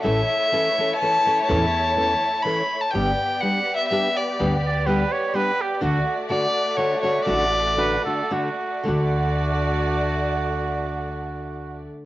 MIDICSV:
0, 0, Header, 1, 6, 480
1, 0, Start_track
1, 0, Key_signature, 2, "major"
1, 0, Tempo, 481928
1, 51, Time_signature, 3, 2, 24, 8
1, 7251, Tempo, 514139
1, 8211, Tempo, 542005
1, 11528, End_track
2, 0, Start_track
2, 0, Title_t, "Violin"
2, 0, Program_c, 0, 40
2, 28, Note_on_c, 0, 76, 113
2, 953, Note_off_c, 0, 76, 0
2, 965, Note_on_c, 0, 81, 117
2, 1428, Note_off_c, 0, 81, 0
2, 1437, Note_on_c, 0, 81, 108
2, 2416, Note_on_c, 0, 83, 104
2, 2431, Note_off_c, 0, 81, 0
2, 2794, Note_on_c, 0, 81, 89
2, 2809, Note_off_c, 0, 83, 0
2, 2892, Note_on_c, 0, 79, 97
2, 2907, Note_off_c, 0, 81, 0
2, 3390, Note_on_c, 0, 78, 95
2, 3405, Note_off_c, 0, 79, 0
2, 3742, Note_off_c, 0, 78, 0
2, 3748, Note_on_c, 0, 76, 98
2, 3866, Note_off_c, 0, 76, 0
2, 3872, Note_on_c, 0, 76, 114
2, 4146, Note_on_c, 0, 74, 91
2, 4161, Note_off_c, 0, 76, 0
2, 4625, Note_off_c, 0, 74, 0
2, 6272, Note_on_c, 0, 74, 106
2, 6745, Note_on_c, 0, 73, 106
2, 6760, Note_off_c, 0, 74, 0
2, 6995, Note_off_c, 0, 73, 0
2, 7000, Note_on_c, 0, 73, 94
2, 7220, Note_off_c, 0, 73, 0
2, 7226, Note_on_c, 0, 74, 119
2, 8162, Note_off_c, 0, 74, 0
2, 11528, End_track
3, 0, Start_track
3, 0, Title_t, "Trumpet"
3, 0, Program_c, 1, 56
3, 4639, Note_on_c, 1, 74, 96
3, 4844, Note_on_c, 1, 71, 102
3, 4859, Note_off_c, 1, 74, 0
3, 5099, Note_on_c, 1, 73, 95
3, 5114, Note_off_c, 1, 71, 0
3, 5331, Note_on_c, 1, 71, 115
3, 5346, Note_off_c, 1, 73, 0
3, 5591, Note_on_c, 1, 67, 94
3, 5606, Note_off_c, 1, 71, 0
3, 5803, Note_off_c, 1, 67, 0
3, 5809, Note_on_c, 1, 66, 90
3, 6147, Note_off_c, 1, 66, 0
3, 7727, Note_on_c, 1, 71, 114
3, 7964, Note_off_c, 1, 71, 0
3, 7970, Note_on_c, 1, 69, 86
3, 8228, Note_on_c, 1, 66, 83
3, 8241, Note_off_c, 1, 69, 0
3, 8703, Note_off_c, 1, 66, 0
3, 8714, Note_on_c, 1, 66, 84
3, 11352, Note_off_c, 1, 66, 0
3, 11528, End_track
4, 0, Start_track
4, 0, Title_t, "Violin section"
4, 0, Program_c, 2, 48
4, 0, Note_on_c, 2, 57, 91
4, 53, Note_on_c, 2, 64, 97
4, 60, Note_on_c, 2, 73, 113
4, 2897, Note_off_c, 2, 57, 0
4, 2906, Note_off_c, 2, 64, 0
4, 2909, Note_off_c, 2, 73, 0
4, 2938, Note_on_c, 2, 67, 88
4, 2940, Note_on_c, 2, 74, 87
4, 2942, Note_on_c, 2, 59, 89
4, 5777, Note_off_c, 2, 67, 0
4, 5779, Note_off_c, 2, 59, 0
4, 5795, Note_on_c, 2, 57, 97
4, 5795, Note_on_c, 2, 66, 93
4, 8662, Note_off_c, 2, 74, 0
4, 8664, Note_off_c, 2, 57, 0
4, 8664, Note_off_c, 2, 66, 0
4, 8718, Note_on_c, 2, 66, 83
4, 8719, Note_on_c, 2, 74, 109
4, 8720, Note_on_c, 2, 57, 89
4, 11356, Note_off_c, 2, 66, 0
4, 11357, Note_off_c, 2, 74, 0
4, 11358, Note_off_c, 2, 57, 0
4, 11528, End_track
5, 0, Start_track
5, 0, Title_t, "Nylon-string guitar"
5, 0, Program_c, 3, 24
5, 34, Note_on_c, 3, 45, 88
5, 43, Note_on_c, 3, 52, 70
5, 45, Note_on_c, 3, 61, 81
5, 50, Note_on_c, 3, 57, 94
5, 50, Note_on_c, 3, 69, 82
5, 194, Note_off_c, 3, 45, 0
5, 199, Note_off_c, 3, 52, 0
5, 200, Note_off_c, 3, 61, 0
5, 202, Note_off_c, 3, 57, 0
5, 202, Note_off_c, 3, 69, 0
5, 518, Note_on_c, 3, 52, 67
5, 523, Note_on_c, 3, 57, 67
5, 526, Note_on_c, 3, 61, 88
5, 536, Note_on_c, 3, 69, 88
5, 675, Note_off_c, 3, 52, 0
5, 677, Note_off_c, 3, 57, 0
5, 679, Note_off_c, 3, 61, 0
5, 684, Note_off_c, 3, 69, 0
5, 778, Note_on_c, 3, 52, 64
5, 786, Note_on_c, 3, 57, 61
5, 791, Note_on_c, 3, 61, 56
5, 804, Note_on_c, 3, 69, 63
5, 913, Note_off_c, 3, 52, 0
5, 917, Note_off_c, 3, 57, 0
5, 919, Note_off_c, 3, 61, 0
5, 926, Note_off_c, 3, 69, 0
5, 1015, Note_on_c, 3, 52, 72
5, 1020, Note_on_c, 3, 57, 68
5, 1027, Note_on_c, 3, 61, 74
5, 1034, Note_on_c, 3, 69, 78
5, 1162, Note_off_c, 3, 52, 0
5, 1165, Note_off_c, 3, 57, 0
5, 1168, Note_off_c, 3, 61, 0
5, 1172, Note_off_c, 3, 69, 0
5, 1253, Note_on_c, 3, 52, 53
5, 1261, Note_on_c, 3, 57, 61
5, 1262, Note_on_c, 3, 61, 64
5, 1274, Note_on_c, 3, 69, 59
5, 1390, Note_off_c, 3, 52, 0
5, 1394, Note_off_c, 3, 57, 0
5, 1394, Note_off_c, 3, 61, 0
5, 1400, Note_off_c, 3, 69, 0
5, 1478, Note_on_c, 3, 45, 92
5, 1481, Note_on_c, 3, 52, 95
5, 1483, Note_on_c, 3, 61, 97
5, 1486, Note_on_c, 3, 57, 86
5, 1489, Note_on_c, 3, 69, 81
5, 1634, Note_off_c, 3, 45, 0
5, 1635, Note_off_c, 3, 52, 0
5, 1636, Note_off_c, 3, 61, 0
5, 1638, Note_off_c, 3, 57, 0
5, 1639, Note_off_c, 3, 69, 0
5, 1948, Note_on_c, 3, 52, 62
5, 1958, Note_on_c, 3, 57, 70
5, 1965, Note_on_c, 3, 61, 70
5, 1969, Note_on_c, 3, 69, 79
5, 2108, Note_off_c, 3, 52, 0
5, 2114, Note_off_c, 3, 57, 0
5, 2117, Note_off_c, 3, 61, 0
5, 2119, Note_off_c, 3, 69, 0
5, 2438, Note_on_c, 3, 52, 76
5, 2445, Note_on_c, 3, 57, 73
5, 2454, Note_on_c, 3, 61, 81
5, 2456, Note_on_c, 3, 69, 82
5, 2598, Note_off_c, 3, 52, 0
5, 2601, Note_off_c, 3, 57, 0
5, 2606, Note_off_c, 3, 61, 0
5, 2607, Note_off_c, 3, 69, 0
5, 2922, Note_on_c, 3, 50, 73
5, 2927, Note_on_c, 3, 43, 67
5, 2928, Note_on_c, 3, 55, 70
5, 2934, Note_on_c, 3, 62, 84
5, 2934, Note_on_c, 3, 67, 77
5, 2936, Note_on_c, 3, 59, 78
5, 3083, Note_off_c, 3, 50, 0
5, 3086, Note_off_c, 3, 43, 0
5, 3086, Note_off_c, 3, 55, 0
5, 3089, Note_off_c, 3, 67, 0
5, 3090, Note_off_c, 3, 59, 0
5, 3090, Note_off_c, 3, 62, 0
5, 3410, Note_on_c, 3, 55, 70
5, 3417, Note_on_c, 3, 59, 54
5, 3422, Note_on_c, 3, 62, 68
5, 3425, Note_on_c, 3, 67, 69
5, 3569, Note_off_c, 3, 55, 0
5, 3572, Note_off_c, 3, 59, 0
5, 3575, Note_off_c, 3, 62, 0
5, 3576, Note_off_c, 3, 67, 0
5, 3889, Note_on_c, 3, 55, 61
5, 3900, Note_on_c, 3, 59, 68
5, 3906, Note_on_c, 3, 62, 76
5, 3907, Note_on_c, 3, 67, 84
5, 4049, Note_off_c, 3, 55, 0
5, 4054, Note_off_c, 3, 59, 0
5, 4057, Note_off_c, 3, 62, 0
5, 4058, Note_off_c, 3, 67, 0
5, 4373, Note_on_c, 3, 43, 77
5, 4375, Note_on_c, 3, 50, 75
5, 4378, Note_on_c, 3, 55, 77
5, 4379, Note_on_c, 3, 59, 82
5, 4382, Note_on_c, 3, 62, 88
5, 4386, Note_on_c, 3, 67, 92
5, 4527, Note_off_c, 3, 43, 0
5, 4528, Note_off_c, 3, 50, 0
5, 4529, Note_off_c, 3, 55, 0
5, 4530, Note_off_c, 3, 59, 0
5, 4531, Note_off_c, 3, 62, 0
5, 4534, Note_off_c, 3, 67, 0
5, 4843, Note_on_c, 3, 55, 80
5, 4853, Note_on_c, 3, 59, 74
5, 4861, Note_on_c, 3, 62, 76
5, 4867, Note_on_c, 3, 67, 95
5, 5000, Note_off_c, 3, 55, 0
5, 5005, Note_off_c, 3, 59, 0
5, 5009, Note_off_c, 3, 62, 0
5, 5012, Note_off_c, 3, 67, 0
5, 5315, Note_on_c, 3, 55, 73
5, 5318, Note_on_c, 3, 59, 85
5, 5327, Note_on_c, 3, 62, 80
5, 5333, Note_on_c, 3, 67, 95
5, 5474, Note_off_c, 3, 55, 0
5, 5475, Note_off_c, 3, 59, 0
5, 5480, Note_off_c, 3, 62, 0
5, 5483, Note_off_c, 3, 67, 0
5, 5787, Note_on_c, 3, 50, 90
5, 5790, Note_on_c, 3, 62, 94
5, 5797, Note_on_c, 3, 57, 91
5, 5798, Note_on_c, 3, 66, 87
5, 5948, Note_off_c, 3, 50, 0
5, 5949, Note_off_c, 3, 62, 0
5, 5953, Note_off_c, 3, 57, 0
5, 5953, Note_off_c, 3, 66, 0
5, 6268, Note_on_c, 3, 50, 81
5, 6274, Note_on_c, 3, 57, 66
5, 6276, Note_on_c, 3, 62, 85
5, 6286, Note_on_c, 3, 66, 81
5, 6428, Note_off_c, 3, 50, 0
5, 6431, Note_off_c, 3, 57, 0
5, 6432, Note_off_c, 3, 62, 0
5, 6437, Note_off_c, 3, 66, 0
5, 6744, Note_on_c, 3, 50, 75
5, 6753, Note_on_c, 3, 57, 75
5, 6760, Note_on_c, 3, 62, 89
5, 6762, Note_on_c, 3, 66, 71
5, 6909, Note_off_c, 3, 50, 0
5, 6913, Note_off_c, 3, 57, 0
5, 6916, Note_off_c, 3, 62, 0
5, 6917, Note_off_c, 3, 66, 0
5, 7001, Note_on_c, 3, 50, 59
5, 7007, Note_on_c, 3, 57, 71
5, 7012, Note_on_c, 3, 62, 60
5, 7013, Note_on_c, 3, 66, 63
5, 7149, Note_off_c, 3, 50, 0
5, 7152, Note_off_c, 3, 57, 0
5, 7155, Note_off_c, 3, 62, 0
5, 7155, Note_off_c, 3, 66, 0
5, 7232, Note_on_c, 3, 50, 76
5, 7240, Note_on_c, 3, 57, 77
5, 7240, Note_on_c, 3, 62, 91
5, 7246, Note_on_c, 3, 66, 91
5, 7392, Note_off_c, 3, 50, 0
5, 7395, Note_off_c, 3, 57, 0
5, 7395, Note_off_c, 3, 62, 0
5, 7398, Note_off_c, 3, 66, 0
5, 7707, Note_on_c, 3, 50, 66
5, 7713, Note_on_c, 3, 62, 79
5, 7718, Note_on_c, 3, 57, 78
5, 7720, Note_on_c, 3, 66, 82
5, 7868, Note_off_c, 3, 50, 0
5, 7871, Note_off_c, 3, 62, 0
5, 7873, Note_off_c, 3, 57, 0
5, 7874, Note_off_c, 3, 66, 0
5, 7979, Note_on_c, 3, 50, 61
5, 7980, Note_on_c, 3, 57, 54
5, 7988, Note_on_c, 3, 62, 60
5, 7993, Note_on_c, 3, 66, 58
5, 8118, Note_off_c, 3, 50, 0
5, 8118, Note_off_c, 3, 57, 0
5, 8122, Note_off_c, 3, 62, 0
5, 8124, Note_off_c, 3, 66, 0
5, 8209, Note_on_c, 3, 50, 77
5, 8212, Note_on_c, 3, 57, 69
5, 8213, Note_on_c, 3, 62, 72
5, 8221, Note_on_c, 3, 66, 88
5, 8364, Note_off_c, 3, 50, 0
5, 8366, Note_off_c, 3, 57, 0
5, 8366, Note_off_c, 3, 62, 0
5, 8370, Note_off_c, 3, 66, 0
5, 8676, Note_on_c, 3, 50, 86
5, 8690, Note_on_c, 3, 57, 92
5, 8708, Note_on_c, 3, 62, 89
5, 8716, Note_on_c, 3, 66, 100
5, 11528, Note_off_c, 3, 50, 0
5, 11528, Note_off_c, 3, 57, 0
5, 11528, Note_off_c, 3, 62, 0
5, 11528, Note_off_c, 3, 66, 0
5, 11528, End_track
6, 0, Start_track
6, 0, Title_t, "Upright bass"
6, 0, Program_c, 4, 32
6, 60, Note_on_c, 4, 33, 101
6, 221, Note_off_c, 4, 33, 0
6, 1504, Note_on_c, 4, 40, 119
6, 2122, Note_off_c, 4, 40, 0
6, 2940, Note_on_c, 4, 31, 100
6, 3106, Note_off_c, 4, 31, 0
6, 4386, Note_on_c, 4, 38, 91
6, 5001, Note_off_c, 4, 38, 0
6, 5808, Note_on_c, 4, 38, 105
6, 5972, Note_off_c, 4, 38, 0
6, 7260, Note_on_c, 4, 33, 99
6, 7881, Note_off_c, 4, 33, 0
6, 8715, Note_on_c, 4, 38, 90
6, 11353, Note_off_c, 4, 38, 0
6, 11528, End_track
0, 0, End_of_file